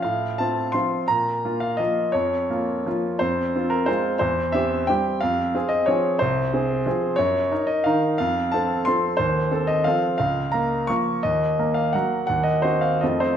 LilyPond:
\new Staff \with { instrumentName = "Grand piano" } { \time 3/4 \key f \phrygian \tempo 4 = 176 << { f''4 a''4 c'''4 | bes''4. f''8 ees''4 | des''2. | c''4. bes'8 c''4 |
c''4 e''4 g''4 | f''4. ees''8 des''4 | c''2. | des''4. ees''8 f''4 |
f''4 a''4 c'''4 | c''4. ees''8 f''4 | f''4 bes''4 des'''4 | ees''4. f''8 ges''4 |
ges''8 ees''8 c''8 f''8 ees''8 c''8 | } \\ { a,4 <c' f'>4 <f c' f'>4 | bes,4 <bes f'>4 <f bes f'>4 | f,4 <bes f'>4 <f bes f'>4 | f,4 <c' f'>4 <aes c' f'>4 |
e,4 <c' g'>4 <g c' g'>4 | f,4 <c' aes'>4 <f c' aes'>4 | c,4 <c' aes'>4 <f c' aes'>4 | ges,4 <ees' bes'>4 <ees ees' bes'>4 |
f,4 <c' a'>4 <f c' a'>4 | ees,4 <c' a'>4 <f c' a'>4 | des,4 <bes bes'>4 <f bes bes'>4 | ees,4 <bes bes'>4 <ges bes bes'>4 |
ees,4 <c' ges'>4 <f, a c' f'>4 | } >> }